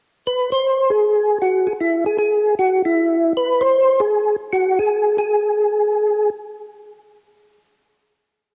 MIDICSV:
0, 0, Header, 1, 2, 480
1, 0, Start_track
1, 0, Tempo, 387597
1, 798, Time_signature, 4, 2, 24, 8
1, 10585, End_track
2, 0, Start_track
2, 0, Title_t, "Tonewheel organ"
2, 0, Program_c, 0, 16
2, 334, Note_on_c, 0, 71, 86
2, 621, Note_off_c, 0, 71, 0
2, 644, Note_on_c, 0, 72, 87
2, 1116, Note_on_c, 0, 68, 81
2, 1133, Note_off_c, 0, 72, 0
2, 1713, Note_off_c, 0, 68, 0
2, 1756, Note_on_c, 0, 66, 79
2, 2067, Note_on_c, 0, 68, 71
2, 2083, Note_off_c, 0, 66, 0
2, 2142, Note_off_c, 0, 68, 0
2, 2236, Note_on_c, 0, 64, 70
2, 2531, Note_off_c, 0, 64, 0
2, 2552, Note_on_c, 0, 68, 75
2, 2691, Note_off_c, 0, 68, 0
2, 2706, Note_on_c, 0, 68, 76
2, 3158, Note_off_c, 0, 68, 0
2, 3209, Note_on_c, 0, 66, 71
2, 3498, Note_off_c, 0, 66, 0
2, 3536, Note_on_c, 0, 64, 85
2, 4124, Note_off_c, 0, 64, 0
2, 4174, Note_on_c, 0, 71, 84
2, 4471, Note_on_c, 0, 72, 108
2, 4493, Note_off_c, 0, 71, 0
2, 4953, Note_on_c, 0, 68, 82
2, 4968, Note_off_c, 0, 72, 0
2, 5402, Note_off_c, 0, 68, 0
2, 5605, Note_on_c, 0, 66, 77
2, 5929, Note_off_c, 0, 66, 0
2, 5934, Note_on_c, 0, 68, 77
2, 6404, Note_off_c, 0, 68, 0
2, 6419, Note_on_c, 0, 68, 67
2, 7800, Note_off_c, 0, 68, 0
2, 10585, End_track
0, 0, End_of_file